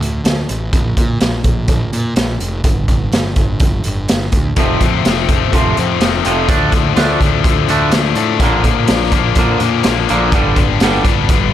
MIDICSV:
0, 0, Header, 1, 5, 480
1, 0, Start_track
1, 0, Tempo, 480000
1, 737, Time_signature, 4, 2, 24, 8
1, 11534, End_track
2, 0, Start_track
2, 0, Title_t, "Distorted electric guitar"
2, 0, Program_c, 0, 30
2, 4569, Note_on_c, 0, 41, 82
2, 4583, Note_on_c, 0, 48, 88
2, 4586, Note_on_c, 0, 53, 99
2, 4601, Note_on_c, 0, 57, 90
2, 4604, Note_on_c, 0, 60, 97
2, 4791, Note_off_c, 0, 60, 0
2, 4803, Note_on_c, 0, 60, 70
2, 4819, Note_off_c, 0, 57, 0
2, 4823, Note_on_c, 0, 57, 66
2, 4839, Note_off_c, 0, 53, 0
2, 4843, Note_on_c, 0, 53, 58
2, 5054, Note_off_c, 0, 41, 0
2, 5060, Note_off_c, 0, 48, 0
2, 5292, Note_off_c, 0, 60, 0
2, 5304, Note_on_c, 0, 60, 66
2, 5323, Note_off_c, 0, 57, 0
2, 5327, Note_on_c, 0, 57, 62
2, 5339, Note_off_c, 0, 53, 0
2, 5343, Note_on_c, 0, 53, 56
2, 5535, Note_on_c, 0, 41, 87
2, 5548, Note_on_c, 0, 48, 91
2, 5549, Note_off_c, 0, 53, 0
2, 5550, Note_off_c, 0, 57, 0
2, 5553, Note_on_c, 0, 53, 90
2, 5561, Note_off_c, 0, 60, 0
2, 5562, Note_on_c, 0, 57, 81
2, 5573, Note_on_c, 0, 60, 99
2, 5758, Note_off_c, 0, 60, 0
2, 5770, Note_on_c, 0, 60, 56
2, 5772, Note_off_c, 0, 57, 0
2, 5784, Note_on_c, 0, 57, 51
2, 5793, Note_off_c, 0, 53, 0
2, 5797, Note_on_c, 0, 53, 53
2, 5991, Note_off_c, 0, 48, 0
2, 6004, Note_on_c, 0, 48, 63
2, 6011, Note_off_c, 0, 57, 0
2, 6014, Note_off_c, 0, 53, 0
2, 6016, Note_off_c, 0, 41, 0
2, 6018, Note_on_c, 0, 53, 74
2, 6023, Note_on_c, 0, 57, 71
2, 6026, Note_off_c, 0, 60, 0
2, 6038, Note_on_c, 0, 60, 75
2, 6224, Note_off_c, 0, 60, 0
2, 6236, Note_on_c, 0, 60, 65
2, 6246, Note_off_c, 0, 57, 0
2, 6258, Note_on_c, 0, 57, 61
2, 6276, Note_off_c, 0, 53, 0
2, 6280, Note_on_c, 0, 53, 53
2, 6472, Note_off_c, 0, 48, 0
2, 6473, Note_off_c, 0, 60, 0
2, 6476, Note_on_c, 0, 50, 95
2, 6484, Note_off_c, 0, 57, 0
2, 6487, Note_off_c, 0, 53, 0
2, 6491, Note_on_c, 0, 53, 93
2, 6508, Note_on_c, 0, 57, 93
2, 6511, Note_on_c, 0, 62, 99
2, 6712, Note_off_c, 0, 62, 0
2, 6716, Note_on_c, 0, 62, 66
2, 6726, Note_off_c, 0, 57, 0
2, 6738, Note_on_c, 0, 57, 65
2, 6753, Note_off_c, 0, 53, 0
2, 6757, Note_on_c, 0, 53, 53
2, 6967, Note_off_c, 0, 50, 0
2, 7194, Note_off_c, 0, 62, 0
2, 7198, Note_on_c, 0, 62, 63
2, 7205, Note_off_c, 0, 57, 0
2, 7217, Note_on_c, 0, 57, 60
2, 7228, Note_off_c, 0, 53, 0
2, 7232, Note_on_c, 0, 53, 58
2, 7441, Note_off_c, 0, 53, 0
2, 7447, Note_on_c, 0, 50, 80
2, 7453, Note_on_c, 0, 53, 87
2, 7458, Note_off_c, 0, 57, 0
2, 7470, Note_off_c, 0, 62, 0
2, 7470, Note_on_c, 0, 57, 91
2, 7474, Note_on_c, 0, 62, 82
2, 7685, Note_off_c, 0, 62, 0
2, 7689, Note_on_c, 0, 62, 69
2, 7698, Note_off_c, 0, 57, 0
2, 7706, Note_off_c, 0, 53, 0
2, 7710, Note_on_c, 0, 57, 56
2, 7718, Note_on_c, 0, 53, 49
2, 7910, Note_off_c, 0, 50, 0
2, 7918, Note_off_c, 0, 53, 0
2, 7922, Note_on_c, 0, 50, 69
2, 7930, Note_off_c, 0, 57, 0
2, 7930, Note_on_c, 0, 53, 72
2, 7942, Note_on_c, 0, 57, 76
2, 7949, Note_off_c, 0, 62, 0
2, 7953, Note_on_c, 0, 62, 77
2, 8153, Note_off_c, 0, 62, 0
2, 8157, Note_on_c, 0, 62, 74
2, 8167, Note_off_c, 0, 57, 0
2, 8179, Note_on_c, 0, 57, 67
2, 8189, Note_off_c, 0, 53, 0
2, 8201, Note_on_c, 0, 53, 56
2, 8386, Note_off_c, 0, 50, 0
2, 8391, Note_on_c, 0, 46, 94
2, 8396, Note_off_c, 0, 53, 0
2, 8398, Note_on_c, 0, 50, 82
2, 8405, Note_off_c, 0, 57, 0
2, 8408, Note_on_c, 0, 53, 91
2, 8418, Note_on_c, 0, 58, 94
2, 8424, Note_off_c, 0, 62, 0
2, 8428, Note_on_c, 0, 62, 103
2, 8625, Note_off_c, 0, 62, 0
2, 8629, Note_on_c, 0, 62, 67
2, 8643, Note_off_c, 0, 58, 0
2, 8652, Note_off_c, 0, 53, 0
2, 8655, Note_on_c, 0, 58, 63
2, 8664, Note_on_c, 0, 53, 59
2, 8885, Note_off_c, 0, 46, 0
2, 8889, Note_off_c, 0, 50, 0
2, 9117, Note_off_c, 0, 62, 0
2, 9121, Note_on_c, 0, 62, 60
2, 9124, Note_off_c, 0, 58, 0
2, 9136, Note_on_c, 0, 58, 62
2, 9150, Note_off_c, 0, 53, 0
2, 9162, Note_on_c, 0, 53, 52
2, 9357, Note_on_c, 0, 46, 81
2, 9358, Note_off_c, 0, 53, 0
2, 9362, Note_on_c, 0, 50, 82
2, 9369, Note_off_c, 0, 58, 0
2, 9370, Note_on_c, 0, 53, 90
2, 9376, Note_off_c, 0, 62, 0
2, 9381, Note_on_c, 0, 58, 91
2, 9388, Note_on_c, 0, 62, 102
2, 9589, Note_off_c, 0, 62, 0
2, 9601, Note_on_c, 0, 62, 65
2, 9615, Note_off_c, 0, 58, 0
2, 9624, Note_off_c, 0, 53, 0
2, 9627, Note_on_c, 0, 58, 59
2, 9636, Note_on_c, 0, 53, 55
2, 9826, Note_off_c, 0, 50, 0
2, 9838, Note_on_c, 0, 50, 70
2, 9840, Note_off_c, 0, 53, 0
2, 9848, Note_off_c, 0, 46, 0
2, 9852, Note_on_c, 0, 53, 74
2, 9855, Note_off_c, 0, 58, 0
2, 9867, Note_on_c, 0, 58, 73
2, 9868, Note_off_c, 0, 62, 0
2, 9880, Note_on_c, 0, 62, 73
2, 10062, Note_off_c, 0, 62, 0
2, 10074, Note_on_c, 0, 62, 66
2, 10084, Note_off_c, 0, 58, 0
2, 10096, Note_on_c, 0, 58, 63
2, 10099, Note_off_c, 0, 53, 0
2, 10111, Note_on_c, 0, 53, 57
2, 10309, Note_on_c, 0, 43, 94
2, 10313, Note_off_c, 0, 62, 0
2, 10315, Note_off_c, 0, 50, 0
2, 10323, Note_off_c, 0, 58, 0
2, 10326, Note_on_c, 0, 50, 87
2, 10327, Note_off_c, 0, 53, 0
2, 10331, Note_on_c, 0, 55, 94
2, 10341, Note_on_c, 0, 59, 95
2, 10344, Note_on_c, 0, 62, 91
2, 10548, Note_off_c, 0, 62, 0
2, 10560, Note_on_c, 0, 62, 72
2, 10564, Note_off_c, 0, 59, 0
2, 10576, Note_on_c, 0, 59, 61
2, 10584, Note_off_c, 0, 55, 0
2, 10596, Note_on_c, 0, 55, 57
2, 10805, Note_off_c, 0, 43, 0
2, 10813, Note_off_c, 0, 50, 0
2, 11030, Note_off_c, 0, 62, 0
2, 11042, Note_on_c, 0, 62, 70
2, 11059, Note_off_c, 0, 59, 0
2, 11071, Note_on_c, 0, 59, 56
2, 11073, Note_off_c, 0, 55, 0
2, 11085, Note_on_c, 0, 55, 60
2, 11286, Note_on_c, 0, 43, 91
2, 11289, Note_off_c, 0, 55, 0
2, 11298, Note_on_c, 0, 50, 86
2, 11301, Note_off_c, 0, 59, 0
2, 11301, Note_on_c, 0, 55, 97
2, 11309, Note_off_c, 0, 62, 0
2, 11313, Note_on_c, 0, 59, 98
2, 11321, Note_on_c, 0, 62, 94
2, 11507, Note_off_c, 0, 62, 0
2, 11531, Note_off_c, 0, 59, 0
2, 11534, Note_off_c, 0, 43, 0
2, 11534, Note_off_c, 0, 50, 0
2, 11534, Note_off_c, 0, 55, 0
2, 11534, End_track
3, 0, Start_track
3, 0, Title_t, "Clean electric guitar"
3, 0, Program_c, 1, 27
3, 4581, Note_on_c, 1, 41, 87
3, 4586, Note_on_c, 1, 48, 92
3, 4589, Note_on_c, 1, 53, 86
3, 4805, Note_off_c, 1, 41, 0
3, 4807, Note_off_c, 1, 48, 0
3, 4809, Note_off_c, 1, 53, 0
3, 4832, Note_on_c, 1, 41, 60
3, 4837, Note_on_c, 1, 48, 70
3, 5041, Note_off_c, 1, 41, 0
3, 5043, Note_off_c, 1, 48, 0
3, 5067, Note_on_c, 1, 41, 64
3, 5072, Note_on_c, 1, 48, 78
3, 5278, Note_off_c, 1, 41, 0
3, 5281, Note_off_c, 1, 48, 0
3, 5291, Note_on_c, 1, 41, 63
3, 5299, Note_on_c, 1, 48, 71
3, 5510, Note_off_c, 1, 41, 0
3, 5514, Note_off_c, 1, 48, 0
3, 5537, Note_on_c, 1, 41, 87
3, 5539, Note_on_c, 1, 53, 93
3, 5540, Note_on_c, 1, 48, 85
3, 5763, Note_off_c, 1, 41, 0
3, 5764, Note_off_c, 1, 53, 0
3, 5765, Note_off_c, 1, 48, 0
3, 5781, Note_on_c, 1, 41, 61
3, 5783, Note_on_c, 1, 48, 67
3, 5996, Note_off_c, 1, 41, 0
3, 5997, Note_off_c, 1, 48, 0
3, 6012, Note_on_c, 1, 41, 63
3, 6016, Note_on_c, 1, 48, 76
3, 6231, Note_off_c, 1, 41, 0
3, 6233, Note_off_c, 1, 48, 0
3, 6259, Note_on_c, 1, 41, 87
3, 6261, Note_on_c, 1, 48, 88
3, 6263, Note_on_c, 1, 53, 92
3, 6482, Note_off_c, 1, 53, 0
3, 6484, Note_off_c, 1, 41, 0
3, 6485, Note_off_c, 1, 48, 0
3, 6486, Note_on_c, 1, 50, 79
3, 6489, Note_on_c, 1, 57, 85
3, 6493, Note_on_c, 1, 62, 99
3, 6711, Note_off_c, 1, 50, 0
3, 6719, Note_off_c, 1, 57, 0
3, 6721, Note_off_c, 1, 62, 0
3, 6723, Note_on_c, 1, 50, 60
3, 6732, Note_on_c, 1, 57, 74
3, 6947, Note_off_c, 1, 50, 0
3, 6951, Note_off_c, 1, 57, 0
3, 6964, Note_on_c, 1, 50, 87
3, 6969, Note_on_c, 1, 57, 89
3, 6972, Note_on_c, 1, 62, 84
3, 7197, Note_off_c, 1, 50, 0
3, 7200, Note_off_c, 1, 57, 0
3, 7201, Note_off_c, 1, 62, 0
3, 7209, Note_on_c, 1, 50, 64
3, 7211, Note_on_c, 1, 57, 74
3, 7430, Note_off_c, 1, 50, 0
3, 7431, Note_off_c, 1, 57, 0
3, 7445, Note_on_c, 1, 50, 69
3, 7450, Note_on_c, 1, 57, 77
3, 7668, Note_off_c, 1, 50, 0
3, 7670, Note_off_c, 1, 57, 0
3, 7695, Note_on_c, 1, 50, 84
3, 7699, Note_on_c, 1, 57, 89
3, 7703, Note_on_c, 1, 62, 86
3, 7922, Note_off_c, 1, 50, 0
3, 7925, Note_off_c, 1, 57, 0
3, 7926, Note_off_c, 1, 62, 0
3, 8174, Note_on_c, 1, 50, 66
3, 8179, Note_on_c, 1, 57, 79
3, 8392, Note_off_c, 1, 50, 0
3, 8395, Note_off_c, 1, 57, 0
3, 8404, Note_on_c, 1, 46, 88
3, 8411, Note_on_c, 1, 50, 90
3, 8414, Note_on_c, 1, 58, 99
3, 8637, Note_off_c, 1, 46, 0
3, 8640, Note_off_c, 1, 50, 0
3, 8642, Note_off_c, 1, 58, 0
3, 8652, Note_on_c, 1, 50, 76
3, 8655, Note_on_c, 1, 46, 66
3, 8872, Note_off_c, 1, 50, 0
3, 8873, Note_off_c, 1, 46, 0
3, 8896, Note_on_c, 1, 46, 73
3, 8902, Note_on_c, 1, 50, 74
3, 9114, Note_off_c, 1, 46, 0
3, 9117, Note_off_c, 1, 50, 0
3, 9138, Note_on_c, 1, 46, 65
3, 9144, Note_on_c, 1, 50, 75
3, 9354, Note_off_c, 1, 46, 0
3, 9358, Note_off_c, 1, 50, 0
3, 9379, Note_on_c, 1, 46, 80
3, 9385, Note_on_c, 1, 50, 87
3, 9388, Note_on_c, 1, 58, 94
3, 9605, Note_off_c, 1, 46, 0
3, 9608, Note_off_c, 1, 50, 0
3, 9609, Note_off_c, 1, 58, 0
3, 9631, Note_on_c, 1, 50, 69
3, 9841, Note_off_c, 1, 50, 0
3, 9864, Note_on_c, 1, 46, 75
3, 9868, Note_on_c, 1, 50, 83
3, 10078, Note_off_c, 1, 46, 0
3, 10080, Note_off_c, 1, 50, 0
3, 10098, Note_on_c, 1, 46, 86
3, 10101, Note_on_c, 1, 50, 95
3, 10105, Note_on_c, 1, 58, 97
3, 10324, Note_off_c, 1, 46, 0
3, 10326, Note_off_c, 1, 50, 0
3, 10328, Note_off_c, 1, 58, 0
3, 10339, Note_on_c, 1, 43, 84
3, 10344, Note_on_c, 1, 50, 92
3, 10346, Note_on_c, 1, 55, 90
3, 10565, Note_off_c, 1, 43, 0
3, 10568, Note_off_c, 1, 50, 0
3, 10569, Note_off_c, 1, 55, 0
3, 10587, Note_on_c, 1, 43, 69
3, 10590, Note_on_c, 1, 50, 76
3, 10800, Note_off_c, 1, 43, 0
3, 10801, Note_off_c, 1, 50, 0
3, 10826, Note_on_c, 1, 43, 86
3, 10830, Note_on_c, 1, 50, 94
3, 10835, Note_on_c, 1, 55, 100
3, 11049, Note_off_c, 1, 43, 0
3, 11051, Note_off_c, 1, 50, 0
3, 11054, Note_off_c, 1, 55, 0
3, 11060, Note_on_c, 1, 43, 65
3, 11276, Note_off_c, 1, 43, 0
3, 11302, Note_on_c, 1, 43, 65
3, 11308, Note_on_c, 1, 50, 74
3, 11518, Note_off_c, 1, 43, 0
3, 11521, Note_off_c, 1, 50, 0
3, 11534, End_track
4, 0, Start_track
4, 0, Title_t, "Picked electric bass"
4, 0, Program_c, 2, 34
4, 4, Note_on_c, 2, 38, 81
4, 205, Note_off_c, 2, 38, 0
4, 243, Note_on_c, 2, 38, 80
4, 444, Note_off_c, 2, 38, 0
4, 498, Note_on_c, 2, 33, 80
4, 693, Note_off_c, 2, 33, 0
4, 730, Note_on_c, 2, 34, 88
4, 929, Note_off_c, 2, 34, 0
4, 973, Note_on_c, 2, 46, 85
4, 1170, Note_off_c, 2, 46, 0
4, 1212, Note_on_c, 2, 34, 86
4, 1410, Note_off_c, 2, 34, 0
4, 1442, Note_on_c, 2, 34, 82
4, 1644, Note_off_c, 2, 34, 0
4, 1682, Note_on_c, 2, 34, 78
4, 1884, Note_off_c, 2, 34, 0
4, 1926, Note_on_c, 2, 46, 85
4, 2126, Note_off_c, 2, 46, 0
4, 2163, Note_on_c, 2, 34, 79
4, 2364, Note_off_c, 2, 34, 0
4, 2405, Note_on_c, 2, 29, 82
4, 2606, Note_off_c, 2, 29, 0
4, 2637, Note_on_c, 2, 31, 85
4, 2841, Note_off_c, 2, 31, 0
4, 2883, Note_on_c, 2, 31, 79
4, 3084, Note_off_c, 2, 31, 0
4, 3116, Note_on_c, 2, 31, 82
4, 3320, Note_off_c, 2, 31, 0
4, 3363, Note_on_c, 2, 31, 79
4, 3565, Note_off_c, 2, 31, 0
4, 3601, Note_on_c, 2, 31, 79
4, 3804, Note_off_c, 2, 31, 0
4, 3853, Note_on_c, 2, 31, 75
4, 4050, Note_off_c, 2, 31, 0
4, 4100, Note_on_c, 2, 31, 79
4, 4295, Note_off_c, 2, 31, 0
4, 4322, Note_on_c, 2, 38, 78
4, 4524, Note_off_c, 2, 38, 0
4, 4566, Note_on_c, 2, 29, 86
4, 4766, Note_off_c, 2, 29, 0
4, 4807, Note_on_c, 2, 41, 81
4, 5007, Note_off_c, 2, 41, 0
4, 5052, Note_on_c, 2, 29, 84
4, 5250, Note_off_c, 2, 29, 0
4, 5289, Note_on_c, 2, 29, 78
4, 5488, Note_off_c, 2, 29, 0
4, 5525, Note_on_c, 2, 29, 79
4, 5726, Note_off_c, 2, 29, 0
4, 5783, Note_on_c, 2, 41, 84
4, 5977, Note_off_c, 2, 41, 0
4, 6003, Note_on_c, 2, 29, 77
4, 6205, Note_off_c, 2, 29, 0
4, 6254, Note_on_c, 2, 29, 83
4, 6451, Note_off_c, 2, 29, 0
4, 6483, Note_on_c, 2, 38, 91
4, 6685, Note_off_c, 2, 38, 0
4, 6720, Note_on_c, 2, 38, 81
4, 6923, Note_off_c, 2, 38, 0
4, 6958, Note_on_c, 2, 38, 81
4, 7162, Note_off_c, 2, 38, 0
4, 7204, Note_on_c, 2, 38, 83
4, 7406, Note_off_c, 2, 38, 0
4, 7439, Note_on_c, 2, 38, 88
4, 7643, Note_off_c, 2, 38, 0
4, 7689, Note_on_c, 2, 38, 85
4, 7888, Note_off_c, 2, 38, 0
4, 7927, Note_on_c, 2, 38, 81
4, 8128, Note_off_c, 2, 38, 0
4, 8154, Note_on_c, 2, 45, 85
4, 8395, Note_on_c, 2, 34, 90
4, 8410, Note_off_c, 2, 45, 0
4, 8600, Note_off_c, 2, 34, 0
4, 8637, Note_on_c, 2, 46, 77
4, 8841, Note_off_c, 2, 46, 0
4, 8897, Note_on_c, 2, 34, 86
4, 9094, Note_off_c, 2, 34, 0
4, 9120, Note_on_c, 2, 34, 84
4, 9324, Note_off_c, 2, 34, 0
4, 9360, Note_on_c, 2, 34, 81
4, 9564, Note_off_c, 2, 34, 0
4, 9609, Note_on_c, 2, 46, 81
4, 9809, Note_off_c, 2, 46, 0
4, 9862, Note_on_c, 2, 34, 80
4, 10056, Note_off_c, 2, 34, 0
4, 10109, Note_on_c, 2, 34, 84
4, 10301, Note_off_c, 2, 34, 0
4, 10320, Note_on_c, 2, 31, 89
4, 10524, Note_off_c, 2, 31, 0
4, 10562, Note_on_c, 2, 31, 84
4, 10765, Note_off_c, 2, 31, 0
4, 10810, Note_on_c, 2, 31, 88
4, 11010, Note_off_c, 2, 31, 0
4, 11042, Note_on_c, 2, 31, 84
4, 11245, Note_off_c, 2, 31, 0
4, 11286, Note_on_c, 2, 31, 80
4, 11488, Note_off_c, 2, 31, 0
4, 11534, End_track
5, 0, Start_track
5, 0, Title_t, "Drums"
5, 24, Note_on_c, 9, 42, 59
5, 124, Note_off_c, 9, 42, 0
5, 249, Note_on_c, 9, 42, 80
5, 260, Note_on_c, 9, 38, 101
5, 349, Note_off_c, 9, 42, 0
5, 360, Note_off_c, 9, 38, 0
5, 489, Note_on_c, 9, 42, 59
5, 589, Note_off_c, 9, 42, 0
5, 729, Note_on_c, 9, 36, 99
5, 730, Note_on_c, 9, 42, 78
5, 829, Note_off_c, 9, 36, 0
5, 830, Note_off_c, 9, 42, 0
5, 969, Note_on_c, 9, 36, 78
5, 972, Note_on_c, 9, 42, 55
5, 1069, Note_off_c, 9, 36, 0
5, 1072, Note_off_c, 9, 42, 0
5, 1205, Note_on_c, 9, 42, 77
5, 1216, Note_on_c, 9, 38, 108
5, 1305, Note_off_c, 9, 42, 0
5, 1316, Note_off_c, 9, 38, 0
5, 1441, Note_on_c, 9, 42, 56
5, 1445, Note_on_c, 9, 36, 81
5, 1541, Note_off_c, 9, 42, 0
5, 1545, Note_off_c, 9, 36, 0
5, 1678, Note_on_c, 9, 42, 76
5, 1683, Note_on_c, 9, 36, 97
5, 1778, Note_off_c, 9, 42, 0
5, 1783, Note_off_c, 9, 36, 0
5, 1928, Note_on_c, 9, 42, 56
5, 2028, Note_off_c, 9, 42, 0
5, 2159, Note_on_c, 9, 42, 70
5, 2170, Note_on_c, 9, 38, 104
5, 2259, Note_off_c, 9, 42, 0
5, 2270, Note_off_c, 9, 38, 0
5, 2404, Note_on_c, 9, 42, 55
5, 2504, Note_off_c, 9, 42, 0
5, 2639, Note_on_c, 9, 42, 70
5, 2641, Note_on_c, 9, 36, 95
5, 2739, Note_off_c, 9, 42, 0
5, 2741, Note_off_c, 9, 36, 0
5, 2881, Note_on_c, 9, 42, 50
5, 2882, Note_on_c, 9, 36, 76
5, 2981, Note_off_c, 9, 42, 0
5, 2982, Note_off_c, 9, 36, 0
5, 3124, Note_on_c, 9, 42, 74
5, 3135, Note_on_c, 9, 38, 99
5, 3224, Note_off_c, 9, 42, 0
5, 3235, Note_off_c, 9, 38, 0
5, 3358, Note_on_c, 9, 42, 55
5, 3363, Note_on_c, 9, 36, 77
5, 3458, Note_off_c, 9, 42, 0
5, 3463, Note_off_c, 9, 36, 0
5, 3596, Note_on_c, 9, 42, 76
5, 3603, Note_on_c, 9, 36, 103
5, 3696, Note_off_c, 9, 42, 0
5, 3703, Note_off_c, 9, 36, 0
5, 3836, Note_on_c, 9, 42, 58
5, 3936, Note_off_c, 9, 42, 0
5, 4084, Note_on_c, 9, 42, 79
5, 4095, Note_on_c, 9, 38, 103
5, 4184, Note_off_c, 9, 42, 0
5, 4195, Note_off_c, 9, 38, 0
5, 4321, Note_on_c, 9, 42, 59
5, 4326, Note_on_c, 9, 36, 72
5, 4421, Note_off_c, 9, 42, 0
5, 4426, Note_off_c, 9, 36, 0
5, 4562, Note_on_c, 9, 42, 83
5, 4568, Note_on_c, 9, 36, 97
5, 4662, Note_off_c, 9, 42, 0
5, 4668, Note_off_c, 9, 36, 0
5, 4807, Note_on_c, 9, 42, 60
5, 4808, Note_on_c, 9, 36, 72
5, 4907, Note_off_c, 9, 42, 0
5, 4908, Note_off_c, 9, 36, 0
5, 5049, Note_on_c, 9, 42, 83
5, 5060, Note_on_c, 9, 38, 102
5, 5149, Note_off_c, 9, 42, 0
5, 5160, Note_off_c, 9, 38, 0
5, 5286, Note_on_c, 9, 42, 61
5, 5287, Note_on_c, 9, 36, 82
5, 5386, Note_off_c, 9, 42, 0
5, 5387, Note_off_c, 9, 36, 0
5, 5530, Note_on_c, 9, 36, 99
5, 5532, Note_on_c, 9, 42, 77
5, 5630, Note_off_c, 9, 36, 0
5, 5632, Note_off_c, 9, 42, 0
5, 5770, Note_on_c, 9, 42, 57
5, 5870, Note_off_c, 9, 42, 0
5, 6006, Note_on_c, 9, 42, 77
5, 6017, Note_on_c, 9, 38, 97
5, 6106, Note_off_c, 9, 42, 0
5, 6117, Note_off_c, 9, 38, 0
5, 6247, Note_on_c, 9, 42, 58
5, 6347, Note_off_c, 9, 42, 0
5, 6484, Note_on_c, 9, 42, 76
5, 6486, Note_on_c, 9, 36, 109
5, 6584, Note_off_c, 9, 42, 0
5, 6586, Note_off_c, 9, 36, 0
5, 6721, Note_on_c, 9, 42, 51
5, 6724, Note_on_c, 9, 36, 78
5, 6821, Note_off_c, 9, 42, 0
5, 6824, Note_off_c, 9, 36, 0
5, 6964, Note_on_c, 9, 42, 73
5, 6975, Note_on_c, 9, 38, 103
5, 7064, Note_off_c, 9, 42, 0
5, 7075, Note_off_c, 9, 38, 0
5, 7206, Note_on_c, 9, 36, 84
5, 7215, Note_on_c, 9, 42, 54
5, 7306, Note_off_c, 9, 36, 0
5, 7315, Note_off_c, 9, 42, 0
5, 7444, Note_on_c, 9, 36, 105
5, 7449, Note_on_c, 9, 42, 80
5, 7544, Note_off_c, 9, 36, 0
5, 7549, Note_off_c, 9, 42, 0
5, 7685, Note_on_c, 9, 42, 58
5, 7785, Note_off_c, 9, 42, 0
5, 7915, Note_on_c, 9, 42, 81
5, 7926, Note_on_c, 9, 38, 99
5, 8015, Note_off_c, 9, 42, 0
5, 8026, Note_off_c, 9, 38, 0
5, 8153, Note_on_c, 9, 42, 62
5, 8253, Note_off_c, 9, 42, 0
5, 8398, Note_on_c, 9, 36, 101
5, 8398, Note_on_c, 9, 42, 85
5, 8498, Note_off_c, 9, 36, 0
5, 8498, Note_off_c, 9, 42, 0
5, 8639, Note_on_c, 9, 36, 73
5, 8641, Note_on_c, 9, 42, 59
5, 8739, Note_off_c, 9, 36, 0
5, 8741, Note_off_c, 9, 42, 0
5, 8874, Note_on_c, 9, 42, 85
5, 8885, Note_on_c, 9, 38, 111
5, 8974, Note_off_c, 9, 42, 0
5, 8985, Note_off_c, 9, 38, 0
5, 9117, Note_on_c, 9, 42, 63
5, 9118, Note_on_c, 9, 36, 81
5, 9217, Note_off_c, 9, 42, 0
5, 9218, Note_off_c, 9, 36, 0
5, 9353, Note_on_c, 9, 42, 84
5, 9360, Note_on_c, 9, 36, 105
5, 9453, Note_off_c, 9, 42, 0
5, 9460, Note_off_c, 9, 36, 0
5, 9598, Note_on_c, 9, 42, 59
5, 9698, Note_off_c, 9, 42, 0
5, 9834, Note_on_c, 9, 42, 78
5, 9845, Note_on_c, 9, 38, 103
5, 9934, Note_off_c, 9, 42, 0
5, 9945, Note_off_c, 9, 38, 0
5, 10087, Note_on_c, 9, 42, 57
5, 10187, Note_off_c, 9, 42, 0
5, 10321, Note_on_c, 9, 42, 72
5, 10322, Note_on_c, 9, 36, 106
5, 10421, Note_off_c, 9, 42, 0
5, 10422, Note_off_c, 9, 36, 0
5, 10563, Note_on_c, 9, 42, 57
5, 10564, Note_on_c, 9, 36, 79
5, 10663, Note_off_c, 9, 42, 0
5, 10664, Note_off_c, 9, 36, 0
5, 10802, Note_on_c, 9, 42, 77
5, 10813, Note_on_c, 9, 38, 106
5, 10902, Note_off_c, 9, 42, 0
5, 10913, Note_off_c, 9, 38, 0
5, 11046, Note_on_c, 9, 36, 79
5, 11048, Note_on_c, 9, 42, 56
5, 11146, Note_off_c, 9, 36, 0
5, 11148, Note_off_c, 9, 42, 0
5, 11289, Note_on_c, 9, 36, 110
5, 11290, Note_on_c, 9, 42, 78
5, 11389, Note_off_c, 9, 36, 0
5, 11390, Note_off_c, 9, 42, 0
5, 11534, End_track
0, 0, End_of_file